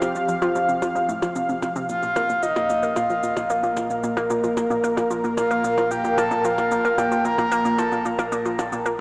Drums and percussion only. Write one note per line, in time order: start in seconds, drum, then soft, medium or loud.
0.02 percussion blips soft
0.02 cabasa medium
0.15 cabasa soft
0.29 cabasa medium
0.42 percussion blips soft
0.42 cabasa soft
0.56 cabasa medium
0.69 cabasa soft
0.82 percussion blips soft
0.82 cabasa medium
0.96 cabasa soft
1.09 cabasa medium
1.22 percussion blips soft
1.22 cabasa soft
1.36 cabasa medium
1.49 cabasa soft
1.62 percussion blips soft
1.62 cabasa medium
1.76 cabasa soft
1.89 cabasa medium
2.03 cabasa soft
2.16 percussion blips soft
2.16 cabasa medium
2.29 cabasa medium
2.43 cabasa medium
2.56 percussion blips soft
2.56 cabasa soft
2.70 cabasa medium
2.83 cabasa soft
2.96 percussion blips soft
2.96 cabasa medium
3.10 cabasa soft
3.23 cabasa medium
3.37 percussion blips soft
3.37 cabasa medium
3.50 cabasa medium
3.63 cabasa soft
3.77 percussion blips soft
3.77 cabasa medium
3.90 cabasa soft
4.04 cabasa medium
4.17 percussion blips soft
4.17 cabasa soft
4.30 cabasa medium
4.44 cabasa medium
4.57 percussion blips soft
4.57 cabasa medium
4.71 cabasa soft
4.84 cabasa medium
4.97 percussion blips soft
4.97 cabasa medium
5.11 cabasa medium
5.24 cabasa soft
5.37 percussion blips soft
5.37 cabasa medium
5.51 cabasa medium
5.64 cabasa medium
5.78 percussion blips soft
5.78 cabasa soft
5.91 cabasa medium
6.04 cabasa soft
6.18 percussion blips soft
6.18 cabasa medium
6.31 cabasa soft
6.45 cabasa medium
6.58 percussion blips soft
6.58 cabasa medium
6.71 cabasa medium
6.85 cabasa soft
6.98 percussion blips soft
6.98 cabasa medium
7.12 cabasa soft
7.25 cabasa medium
7.38 percussion blips soft
7.38 cabasa soft
7.52 cabasa medium
7.65 cabasa medium
7.79 percussion blips soft
7.79 cabasa medium
7.92 cabasa soft
8.05 cabasa medium
8.19 percussion blips soft
8.19 cabasa soft
8.32 cabasa medium
8.45 cabasa soft
8.59 percussion blips soft
8.59 cabasa medium
8.72 cabasa medium
8.86 cabasa medium